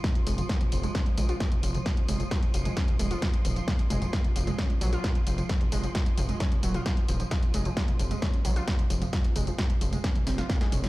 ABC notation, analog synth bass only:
X:1
M:4/4
L:1/8
Q:1/4=132
K:Fm
V:1 name="Analog synth bass" clef=bass
z F,,, z F,,, z B,,, z F,,, | z F,,, z F,,, z E,,, z E,,, | z F,,, z F,,, z B,,, z F,,, | z F,,, z F,,, z E,,, z E,,, |
z F,,, z F,,, z B,,, z F,,, | z F,,, z F,,, z F,,, z F,,, |]